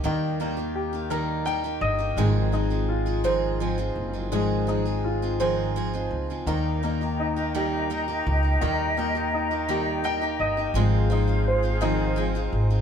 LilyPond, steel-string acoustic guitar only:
\new Staff \with { instrumentName = "Steel-string acoustic guitar" } { \time 6/8 \key ees \dorian \tempo 4. = 56 <ees g bes ees' g'>8 <g bes ees' g'>16 <bes ees' g'>8 <bes ees' g'>16 <ees g bes ees' g'>8 <g bes ees' g'>16 <bes ees' g'>8 <bes ees' g'>16 | <aes, ees f aes c' aes'>8 <f aes c' aes'>16 <f aes c' aes'>8 <f aes c' aes'>16 <aes, ees f aes c' aes'>8 <f aes c' aes'>16 <f aes c' aes'>8 <f aes c' aes'>16 | <aes, ees f aes c' aes'>8 <f aes c' aes'>16 <f aes c' aes'>8 <f aes c' aes'>16 <aes, ees f aes c' aes'>8 <f aes c' aes'>16 <f aes c' aes'>8 <f aes c' aes'>16 | <ees g bes ees' g'>8 <g bes ees' g'>16 <bes ees' g'>8 <bes ees' g'>16 <ees g bes ees' g'>8 <g bes ees' g'>16 <bes ees' g'>8 <bes ees' g'>16 |
<ees g bes ees' g'>8 <g bes ees' g'>16 <bes ees' g'>8 <bes ees' g'>16 <ees g bes ees' g'>8 <g bes ees' g'>16 <bes ees' g'>8 <bes ees' g'>16 | <aes, ees f aes c' f'>8 <f aes c' f'>16 <f aes c' f'>8 <f aes c' f'>16 <aes, ees f aes c' f'>8 <f aes c' f'>16 <f aes c' f'>8 <f aes c' f'>16 | }